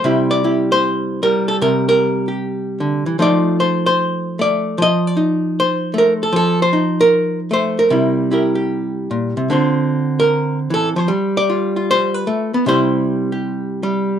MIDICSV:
0, 0, Header, 1, 2, 480
1, 0, Start_track
1, 0, Tempo, 394477
1, 47, Time_signature, 4, 2, 24, 8
1, 17271, End_track
2, 0, Start_track
2, 0, Title_t, "Hollow-body jazz guitar"
2, 0, Program_c, 0, 26
2, 0, Note_on_c, 0, 72, 78
2, 49, Note_on_c, 0, 48, 70
2, 57, Note_on_c, 0, 55, 44
2, 67, Note_on_c, 0, 64, 43
2, 73, Note_on_c, 0, 67, 44
2, 369, Note_off_c, 0, 72, 0
2, 374, Note_on_c, 0, 74, 86
2, 534, Note_off_c, 0, 64, 0
2, 539, Note_off_c, 0, 67, 0
2, 539, Note_on_c, 0, 64, 42
2, 544, Note_on_c, 0, 67, 40
2, 849, Note_off_c, 0, 74, 0
2, 875, Note_on_c, 0, 72, 87
2, 1480, Note_off_c, 0, 55, 0
2, 1490, Note_off_c, 0, 72, 0
2, 1493, Note_on_c, 0, 55, 60
2, 1495, Note_on_c, 0, 70, 75
2, 1798, Note_off_c, 0, 70, 0
2, 1803, Note_on_c, 0, 69, 73
2, 1898, Note_off_c, 0, 69, 0
2, 1939, Note_off_c, 0, 48, 0
2, 1945, Note_off_c, 0, 64, 0
2, 1948, Note_off_c, 0, 67, 0
2, 1966, Note_on_c, 0, 48, 67
2, 1973, Note_on_c, 0, 70, 82
2, 2283, Note_off_c, 0, 70, 0
2, 2296, Note_on_c, 0, 70, 85
2, 2774, Note_on_c, 0, 67, 43
2, 3411, Note_on_c, 0, 50, 51
2, 3722, Note_off_c, 0, 50, 0
2, 3727, Note_on_c, 0, 52, 52
2, 3876, Note_off_c, 0, 52, 0
2, 3881, Note_on_c, 0, 53, 65
2, 3882, Note_off_c, 0, 48, 0
2, 3883, Note_off_c, 0, 55, 0
2, 3883, Note_off_c, 0, 67, 0
2, 3888, Note_on_c, 0, 57, 40
2, 3896, Note_on_c, 0, 63, 46
2, 3903, Note_on_c, 0, 65, 43
2, 3906, Note_off_c, 0, 70, 0
2, 3919, Note_on_c, 0, 74, 85
2, 4376, Note_off_c, 0, 74, 0
2, 4380, Note_on_c, 0, 72, 83
2, 4688, Note_off_c, 0, 72, 0
2, 4702, Note_on_c, 0, 72, 90
2, 5339, Note_off_c, 0, 57, 0
2, 5343, Note_on_c, 0, 57, 51
2, 5345, Note_off_c, 0, 72, 0
2, 5371, Note_on_c, 0, 74, 91
2, 5812, Note_off_c, 0, 53, 0
2, 5817, Note_on_c, 0, 53, 62
2, 5833, Note_off_c, 0, 74, 0
2, 5854, Note_off_c, 0, 63, 0
2, 5867, Note_on_c, 0, 75, 109
2, 5903, Note_off_c, 0, 57, 0
2, 5903, Note_off_c, 0, 65, 0
2, 6171, Note_off_c, 0, 75, 0
2, 6171, Note_on_c, 0, 74, 96
2, 6286, Note_on_c, 0, 63, 45
2, 6784, Note_off_c, 0, 74, 0
2, 6811, Note_on_c, 0, 72, 91
2, 7225, Note_on_c, 0, 57, 57
2, 7279, Note_on_c, 0, 70, 93
2, 7454, Note_off_c, 0, 70, 0
2, 7573, Note_off_c, 0, 72, 0
2, 7579, Note_on_c, 0, 69, 74
2, 7682, Note_off_c, 0, 53, 0
2, 7685, Note_off_c, 0, 57, 0
2, 7689, Note_off_c, 0, 63, 0
2, 7696, Note_on_c, 0, 53, 61
2, 7725, Note_off_c, 0, 69, 0
2, 7741, Note_on_c, 0, 69, 92
2, 8042, Note_off_c, 0, 69, 0
2, 8058, Note_on_c, 0, 72, 87
2, 8187, Note_on_c, 0, 63, 44
2, 8525, Note_on_c, 0, 70, 86
2, 8990, Note_off_c, 0, 70, 0
2, 8995, Note_off_c, 0, 72, 0
2, 9136, Note_on_c, 0, 57, 58
2, 9167, Note_on_c, 0, 72, 82
2, 9478, Note_on_c, 0, 70, 74
2, 9600, Note_off_c, 0, 53, 0
2, 9604, Note_off_c, 0, 57, 0
2, 9607, Note_off_c, 0, 63, 0
2, 9617, Note_on_c, 0, 48, 69
2, 9626, Note_on_c, 0, 55, 42
2, 9639, Note_off_c, 0, 72, 0
2, 9643, Note_on_c, 0, 64, 39
2, 10102, Note_off_c, 0, 64, 0
2, 10115, Note_off_c, 0, 70, 0
2, 10116, Note_on_c, 0, 64, 42
2, 10130, Note_on_c, 0, 67, 42
2, 10144, Note_on_c, 0, 70, 39
2, 10394, Note_off_c, 0, 67, 0
2, 10408, Note_on_c, 0, 67, 43
2, 11075, Note_off_c, 0, 48, 0
2, 11081, Note_on_c, 0, 46, 50
2, 11396, Note_off_c, 0, 46, 0
2, 11400, Note_on_c, 0, 48, 54
2, 11540, Note_off_c, 0, 67, 0
2, 11554, Note_off_c, 0, 64, 0
2, 11557, Note_on_c, 0, 50, 62
2, 11567, Note_off_c, 0, 48, 0
2, 11568, Note_off_c, 0, 55, 0
2, 11568, Note_off_c, 0, 70, 0
2, 11571, Note_on_c, 0, 60, 45
2, 11582, Note_on_c, 0, 65, 33
2, 11593, Note_on_c, 0, 72, 43
2, 12388, Note_off_c, 0, 72, 0
2, 12406, Note_on_c, 0, 70, 87
2, 12877, Note_off_c, 0, 70, 0
2, 13018, Note_off_c, 0, 50, 0
2, 13024, Note_on_c, 0, 52, 50
2, 13066, Note_on_c, 0, 69, 83
2, 13245, Note_off_c, 0, 69, 0
2, 13334, Note_off_c, 0, 52, 0
2, 13339, Note_on_c, 0, 53, 58
2, 13361, Note_on_c, 0, 72, 99
2, 13483, Note_on_c, 0, 55, 66
2, 13489, Note_off_c, 0, 65, 0
2, 13503, Note_off_c, 0, 53, 0
2, 13508, Note_off_c, 0, 60, 0
2, 13833, Note_off_c, 0, 72, 0
2, 13838, Note_on_c, 0, 74, 104
2, 13987, Note_on_c, 0, 65, 45
2, 14299, Note_off_c, 0, 65, 0
2, 14314, Note_on_c, 0, 65, 45
2, 14474, Note_off_c, 0, 74, 0
2, 14488, Note_on_c, 0, 72, 106
2, 14775, Note_off_c, 0, 72, 0
2, 14775, Note_on_c, 0, 71, 93
2, 14926, Note_off_c, 0, 55, 0
2, 14931, Note_on_c, 0, 57, 57
2, 15255, Note_off_c, 0, 57, 0
2, 15262, Note_on_c, 0, 59, 64
2, 15406, Note_off_c, 0, 65, 0
2, 15407, Note_on_c, 0, 48, 66
2, 15417, Note_off_c, 0, 59, 0
2, 15419, Note_off_c, 0, 71, 0
2, 15422, Note_on_c, 0, 55, 47
2, 15430, Note_on_c, 0, 64, 46
2, 15435, Note_on_c, 0, 72, 76
2, 15440, Note_on_c, 0, 67, 49
2, 16206, Note_off_c, 0, 67, 0
2, 16211, Note_on_c, 0, 67, 43
2, 16826, Note_off_c, 0, 55, 0
2, 16831, Note_on_c, 0, 55, 57
2, 17271, Note_off_c, 0, 48, 0
2, 17271, Note_off_c, 0, 55, 0
2, 17271, Note_off_c, 0, 64, 0
2, 17271, Note_off_c, 0, 67, 0
2, 17271, Note_off_c, 0, 72, 0
2, 17271, End_track
0, 0, End_of_file